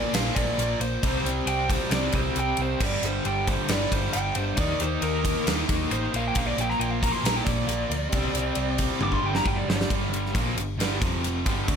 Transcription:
Already playing: overdriven electric guitar A#2 F3 A#3, lead electric guitar D5
0.13 picked electric bass A#1, overdriven electric guitar A#2 F3 A#3, lead electric guitar F5, snare, ride
0.35 picked electric bass A#1, overdriven electric guitar A#2 F3 A#3, lead electric guitar D5, kick, ride
0.58 picked electric bass A#1, overdriven electric guitar A#2 F3 A#3, ride
0.80 picked electric bass A#1, overdriven electric guitar A#2 F3 A#3, lead electric guitar C5, ride
1.03 picked electric bass C2, overdriven electric guitar C3 G3 C4, kick, ride
1.24 picked electric bass C2, overdriven electric guitar C3 G3 C4, ride
1.46 picked electric bass C2, overdriven electric guitar C3 G3 C4, lead electric guitar G5, ride
1.69 overdriven electric guitar C3 G3 C4, lead electric guitar C5, kick, ride
1.91 picked electric bass C2, overdriven electric guitar C3 G3 C4, lead electric guitar D5, snare, ride
2.12 picked electric bass C2, overdriven electric guitar C3 G3 C4, lead electric guitar C5, kick, ride
2.36 picked electric bass C2, overdriven electric guitar C3 G3 C4, lead electric guitar G5, ride
2.57 picked electric bass C2, overdriven electric guitar C3 G3 C4, ride
2.62 lead electric guitar C5
2.80 picked electric bass G1, overdriven electric guitar G2 D3 G3, lead electric guitar D5, kick, crash
3.02 picked electric bass G1, overdriven electric guitar G2 D3 G3, lead electric guitar C5, ride
3.25 picked electric bass G1, overdriven electric guitar G2 D3 G3, lead electric guitar G5, ride
3.47 overdriven electric guitar G2 D3 G3, lead electric guitar C5, kick, ride
3.68 picked electric bass G1, overdriven electric guitar G2 D3 G3, lead electric guitar D5, snare, ride
3.92 picked electric bass G1, overdriven electric guitar G2 D3 G3, lead electric guitar C5, kick, ride
4.13 picked electric bass G1, overdriven electric guitar G2 D3 G3, lead electric guitar G5, ride
4.35 picked electric bass G1, overdriven electric guitar G2 D3, lead electric guitar C5, ride
4.39 overdriven electric guitar G3
4.57 picked electric bass D#2, overdriven electric guitar D#3 A#3 D#4, lead electric guitar D5, kick, ride
4.80 picked electric bass D#2, overdriven electric guitar D#3 A#3 D#4, lead electric guitar C5, ride
5.01 picked electric bass D#2, overdriven electric guitar D#3 A#3 D#4, lead electric guitar A#4, ride
5.23 overdriven electric guitar D#3 A#3 D#4, kick, ride
5.47 picked electric bass D#2, overdriven electric guitar D#3 A#3 D#4, snare, ride
5.67 picked electric bass D#2, overdriven electric guitar D#3 A#3 D#4, kick, ride
5.90 picked electric bass A1, overdriven electric guitar D#3 A#3 D#4, lead electric guitar C5, ride
6.12 picked electric bass A#1, overdriven electric guitar A#2 F3 A#3, ride
6.16 overdriven electric guitar A#3, lead electric guitar F5
6.28 lead electric guitar G5
6.35 picked electric bass A#1, overdriven electric guitar A#2 F3 A#3, lead electric guitar F5, kick, ride
6.47 lead electric guitar D5
6.56 picked electric bass A#1, overdriven electric guitar A#2 F3 A#3, ride
6.61 lead electric guitar G5
6.70 lead electric guitar A#5, snare
6.79 picked electric bass A#1, overdriven electric guitar A#2 F3 A#3, lead electric guitar G5, ride
6.91 lead electric guitar F5
7.01 overdriven electric guitar A#2 F3 A#3, lead electric guitar A#5, kick, ride
7.06 overdriven electric guitar A#2 F3
7.12 lead electric guitar C6
7.24 picked electric bass A#1, overdriven electric guitar A#2 F3 A#3, lead electric guitar A#5, snare, ride
7.36 lead electric guitar G5
7.45 picked electric bass A#1, overdriven electric guitar A#2 F3 A#3, lead electric guitar D5, kick, ride
7.67 picked electric bass A#1, overdriven electric guitar A#2 F3 A#3, ride
7.89 picked electric bass D2, overdriven electric guitar A#2 F3 A#3, ride
8.09 picked electric bass C2, overdriven electric guitar C3 G3 C4, kick, ride
8.13 overdriven electric guitar C3 G3 C4
8.33 picked electric bass C2, overdriven electric guitar C3 G3 C4, ride
8.55 picked electric bass C2, overdriven electric guitar C3 G3 C4, ride
8.78 overdriven electric guitar C3 G3 C4, kick, ride
9.00 picked electric bass G1, overdriven electric guitar G2 D3 G3, lead electric guitar D6, high tom
9.12 lead electric guitar C6, kick
9.23 picked electric bass G1, overdriven electric guitar G2 D3 G3, lead electric guitar G5
9.35 lead electric guitar A#5, snare
9.45 picked electric bass G1, overdriven electric guitar G2 D3 G3, lead electric guitar G5, kick
9.57 lead electric guitar D5
9.68 picked electric bass G1, overdriven electric guitar G2 D3 G3, lead electric guitar D5, snare
9.81 snare
9.90 picked electric bass G1, overdriven electric guitar G2 D3 G3, kick, ride
10.13 ride
10.26 snare
10.33 picked electric bass A#1, overdriven electric guitar A#2 F3 A#3, kick, ride
10.56 picked electric bass G1, overdriven electric guitar G2 D3, ride
10.78 picked electric bass G1, overdriven electric guitar G2 D3 G3, snare, ride
11.01 picked electric bass F1, overdriven electric guitar F2 C3 F3, kick, ride
11.24 ride
11.45 picked electric bass G1, overdriven electric guitar G2 D3 G3, kick, ride
11.68 picked electric bass D2, overdriven electric guitar D3 A3 D4, kick, ride

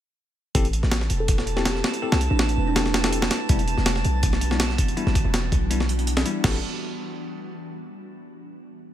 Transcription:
0.55 808-style bass A1, tine electric piano C4 E4 G4 A4, synth texture A5, kick, closed hi-hat
0.65 closed hi-hat
0.73 closed hi-hat
0.83 808-style bass A1, snare
0.91 snare, closed hi-hat
1.01 snare
1.10 808-style bass E1, closed hi-hat
1.20 kalimba A4
1.28 kick, closed hi-hat
1.38 snare
1.47 closed hi-hat
1.56 tine electric piano C4 E4 G4 A4, kalimba G4, snare
1.65 snare, closed hi-hat
1.75 snare
1.84 snare
1.94 closed hi-hat
2.02 tine electric piano C4 E4 G4 A4
2.12 808-style bass C2, snare
2.21 closed hi-hat
2.30 808-style bass A1, kalimba D4
2.39 snare
2.49 closed hi-hat
2.57 808-style bass E1
2.67 kalimba D4
2.76 tine electric piano C4 E4 G4 A4, kalimba D4, snare, closed hi-hat
2.86 snare
2.94 snare, closed hi-hat
3.04 tine electric piano C4 E4 G4 A4, snare, closed hi-hat
3.13 closed hi-hat
3.22 snare
3.31 snare, closed hi-hat
3.49 808-style bass E1, tine electric piano G3 B3 D4 E4, kick, closed hi-hat
3.59 closed hi-hat
3.68 closed hi-hat
3.77 808-style bass E1, snare
3.86 snare, closed hi-hat
3.96 snare
4.05 808-style bass B1, closed hi-hat
4.23 kick, closed hi-hat
4.33 snare
4.41 closed hi-hat
4.51 tine electric piano G3 B3 D4 E4, snare
4.60 snare, closed hi-hat
4.70 snare
4.78 kick, closed hi-hat
4.88 closed hi-hat
4.97 tine electric piano G3 B3 D4 E4, closed hi-hat
5.07 808-style bass G1, snare
5.15 kick, closed hi-hat
5.25 808-style bass E1
5.34 snare, closed hi-hat
5.52 808-style bass B1, kick, closed hi-hat
5.70 tine electric piano G3 B3 D4 E4, closed hi-hat
5.80 snare
5.89 closed hi-hat
5.99 closed hi-hat
6.07 closed hi-hat
6.17 snare
6.26 tine electric piano G3 B3 D4 E4, closed hi-hat
6.44 808-style bass A1, tine electric piano C4 E4 G4 A4, kick, snare, crash

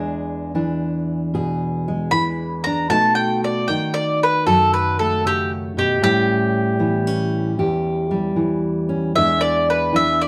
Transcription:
Already playing: steel-string acoustic guitar E2 G#3 D4 G#4, mandolin G#5
0.55 steel-string acoustic guitar E3 D4
1.34 steel-string acoustic guitar B2 G#4
1.88 steel-string acoustic guitar G#3
2.11 steel-string acoustic guitar E3, mandolin B5
2.64 steel-string acoustic guitar D4, mandolin A#5
2.90 steel-string acoustic guitar B2 A3 D#4 F#4, mandolin A5
3.15 mandolin G5
3.44 mandolin D5
3.68 steel-string acoustic guitar D#3 D#4, mandolin G5
3.94 mandolin D5
4.23 mandolin B4
4.46 steel-string acoustic guitar F#2 F#4, mandolin A4
4.74 mandolin B4
4.99 steel-string acoustic guitar A3, mandolin A4
5.25 steel-string acoustic guitar C#3, mandolin G4
5.77 steel-string acoustic guitar B2, mandolin G4
6.02 steel-string acoustic guitar A2 G3 C#4, mandolin G4
6.79 steel-string acoustic guitar E3 B3
7.07 steel-string acoustic guitar C#4
7.58 steel-string acoustic guitar E2 G4
8.11 steel-string acoustic guitar G3
8.36 steel-string acoustic guitar E3
8.89 steel-string acoustic guitar C#4
9.16 steel-string acoustic guitar E2 G#3 D4 G#4, mandolin E5
9.41 mandolin D5
9.70 mandolin B4
9.93 steel-string acoustic guitar E3 D4, mandolin E5
10.21 mandolin D5

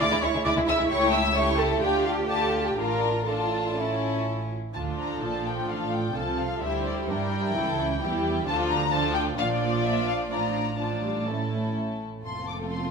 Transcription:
0.00 double bass section D2, violin section G#3 E4 D6, cello section E4, viola section D5
0.11 double bass section D2, violin section G#3 E4
0.22 double bass section D2, violin section G#3 E4 C#6, viola section C#5
0.34 double bass section D2, violin section G#3 E4
0.44 double bass section D2, violin section G#3 E4 D6, viola section D5
0.56 double bass section D2, violin section G#3 E4
0.67 double bass section D2, violin section G#3 E4 E6, viola section E5
0.78 double bass section D2, violin section G#3 E4
0.89 double bass section C#2, violin section A3 G4 C#6, viola section C#5
1.12 viola section E5, violin section E6
1.35 violin section A3 G4 C#6, viola section C#5
1.58 viola section A4, violin section A5
1.81 double bass section D2, violin section D4 F4 G5, viola section G4, cello section G4
2.05 viola section F4, violin section F5
2.29 violin section D4 F4 A5, viola section A4
2.66 viola section G4, violin section G5
2.78 double bass section A1, violin section D4 F4 A#5, cello section F4, viola section A#4
3.27 violin section D4 F4 A5, viola section A4
3.77 violin section C#4 E4
4.74 double bass section D2, cello section D3, viola section F3 D4, violin section F4 A4 A5
4.99 violin section A#5
5.22 double bass section A#1, cello section A#2, violin section D4 A5, viola section F4
5.45 violin section G5
5.68 double bass section A1, cello section A2, violin section A4 F5
5.93 violin section G5
6.15 double bass section C2, cello section C3, viola section F3 F4, violin section A4 A5
6.39 violin section F5
6.61 double bass section D2, cello section D3, viola section G3 E4, violin section G4 C5 E5
6.86 violin section D5
7.10 double bass section G2, cello section G3, viola section D4, violin section E4 A#4 G5
7.33 violin section E4
7.56 double bass section C#2, cello section C#3, viola section E3 E4, violin section A4
7.79 violin section A4
8.03 double bass section E2, cello section E3, viola section G3 E4, violin section G4
8.47 double bass section D2, cello section D3, viola section F3 D4, violin section F4 A4 A5
8.70 violin section A#5
8.92 viola section F3 D4, violin section F4 A4 A5
9.15 violin section G5
9.38 double bass section A#1, cello section A#2, viola section F3 D4, violin section F4 D5 F5
9.61 violin section D5
9.84 violin section E5
10.08 violin section F5
10.31 double bass section A1, cello section A2, viola section F3 D4, violin section F4 D5 A#5
10.79 viola section F3 D4, violin section F4 D5 A5
11.04 viola section G3
11.28 viola section A3 C#4, violin section E4 A4
12.24 double bass section F1, cello section F2, viola section A3 C4, violin section F4 A4 C6
12.48 violin section D6
12.71 violin section C6

